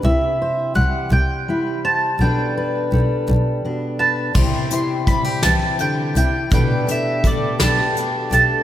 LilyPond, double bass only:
\new Staff \with { instrumentName = "Double bass" } { \clef bass \time 6/8 \key c \lydian \tempo 4. = 56 c,8 r8 c,16 r16 c,4. | b,,8 r8 b,,16 r16 b,,4. | c,4. c,4 c,8 | b,,4. b,,4 b,,8 | }